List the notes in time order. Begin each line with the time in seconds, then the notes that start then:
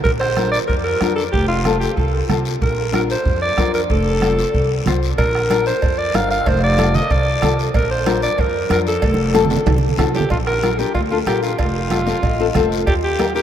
0.04 A#1 A#4, bombo low, high conga, long guiro
0.20 C5, bombo rim
0.37 D4 F4 A#4, bombo rim, high conga, short guiro
0.52 D5, short guiro
0.67 F2 A#4, bombo low, high conga, long guiro
0.83 A#4
1.01 F2 D4 F4 A#4, bombo rim, high conga, short guiro
1.16 A4, short guiro
1.32 F1 G4, bombo low, high conga, long guiro
1.48 F4
1.65 C4 F4 A4, bombo rim, high conga, short guiro
1.80 G4, short guiro
1.97 C2 A4, bombo low, high conga, long guiro
2.28 C2 C4 F4 A4, bombo rim, high conga, low conga, short guiro
2.45 short guiro
2.61 A#1 A#4, bombo low, high conga, long guiro
2.93 D4 F4 A#4, bombo rim, high conga, short guiro
3.10 C5, short guiro
3.25 F2, bombo low, high conga, long guiro
3.42 D5
3.58 F2 D4 F4 A#4, bombo low, bombo rim, high conga, short guiro
3.74 A#4, short guiro
3.90 F1 A4, bombo low, high conga, long guiro
4.22 C4 F4 A4, bombo rim, high conga, short guiro
4.39 short guiro
4.54 C2, bombo low, high conga, long guiro
4.86 C2 C4 F4 C5, bombo rim, high conga, low conga, short guiro
5.03 short guiro
5.18 A#1 A#4, bombo low, cowbell, high conga, long guiro
5.35 bombo rim
5.50 D4 F4 A#4, bombo rim, cowbell, high conga, short guiro
5.66 C5, short guiro
5.82 F2, bombo low, cowbell, high conga, long guiro
5.98 D5
6.14 G1 D4 F4 A#4 F5, bombo rim, cowbell, high conga, low timbale, short guiro
6.30 F5, short guiro
6.46 F1 C5, bombo low, cowbell, high conga, long guiro
6.64 D5
6.77 C4 F4 A4, bombo rim, cowbell, high conga, short guiro
6.94 D#5, low conga, short guiro
7.10 C2 D5, bombo low, cowbell, high conga, long guiro
7.42 C2 C4 F4 A4, bombo rim, cowbell, high conga, low conga, short guiro
7.59 short guiro
7.74 A#1 A#4, bombo low, cowbell, high conga, long guiro
7.91 C5
8.06 D4 F4 A#4, bombo rim, cowbell, high conga, short guiro
8.22 D5, short guiro
8.38 F2 A#4, bombo low, cowbell, high conga, long guiro
8.69 F2 D4 F4 A#4, bombo rim, cowbell, high conga, short guiro
8.87 A4, short guiro
9.02 F1, bombo low, cowbell, high conga, long guiro
9.14 high conga
9.33 C4 F4 A4, bombo rim, cowbell, high conga, short guiro
9.45 low conga
9.50 high timbale, short guiro
9.57 low conga
9.66 C2, bombo low, cowbell, low conga, low timbale, long guiro
9.78 low conga
9.89 low conga
9.97 C2 C4 F4 A4, bombo low, bombo rim, cowbell, low conga, low timbale, short guiro
10.14 G4, low timbale, short guiro
10.21 low conga
10.30 A#1 F4, bombo low, cowbell, high conga, long guiro
10.47 A#4, bombo rim
10.63 D4 F4 A#4, bombo rim, cowbell, high conga, short guiro
10.79 D4 F4 G4 A#4, short guiro
10.95 D2 F4, bombo low, cowbell, high conga, long guiro
11.11 D4 F4 A4
11.26 A#1 D4 F4 G4 A#4, bombo rim, cowbell, high conga, short guiro
11.43 F4, short guiro
11.59 F1 F4, bombo low, cowbell, high conga, long guiro
11.91 C4 F4 A4, bombo rim, cowbell, high conga, short guiro
12.06 C4 F4 A4 F5, short guiro
12.23 A1 D#5, bombo low, cowbell, high conga, long guiro
12.39 C4 F4 A4
12.55 F1 C4 F4 A4 C5, bombo low, bombo rim, cowbell, high conga, low conga, short guiro
12.72 short guiro
12.86 D#2 G4, bombo low, cowbell, high conga, long guiro
13.04 G4
13.19 D#4 G4 A#4, bombo rim, cowbell, high conga, short guiro
13.34 D#4 G4 A#4, short guiro